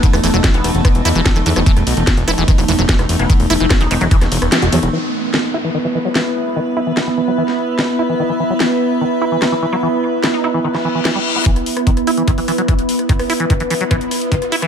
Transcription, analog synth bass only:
X:1
M:4/4
L:1/16
Q:1/4=147
K:Clyd
V:1 name="Analog synth bass" clef=bass
z E,,, E,,, E,,, z E,,, E,,, E,,, z E,,, E,, E,,, z E,,, E,, E,,, | z E,,, B,,, E,,, z E,,, E,,, E,,, z E,,, E,,, E,,, z E,,, E,,, E,,, | z E,,, E,,, E,,, z E,,, E,,, E,,, z E,,, E,,, E,,, z E,,, E,, E,,, | z16 |
z16 | z16 | z16 | z16 |
z16 |]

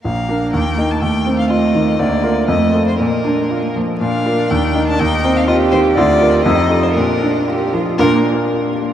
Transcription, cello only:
X:1
M:2/4
L:1/8
Q:1/4=122
K:Bb
V:1 name="Cello"
B,4 | A,4 | B,2 A,2 | B,3 z |
D4 | E2 G2 | F2 E2 | D2 G F |
B, z3 |]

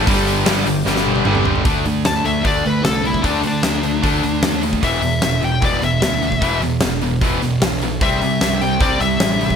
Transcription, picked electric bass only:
X:1
M:4/4
L:1/8
Q:1/4=151
K:Dmix
V:1 name="Picked electric bass" clef=bass
G,,,2 G,,, G,,, G,,,2 G,,,2 | D,, D, D,,2 D,, D,, C,,2 | D,, D, D,,2 D,, D,, ^D,,2 | E,,, E,, E,,,2 E,,, E,,, D,,2 |
E,,, E,, E,,,2 E,,, E,,, B,,,2 | C,, C, C,,2 C,, C,, A,,,2 |]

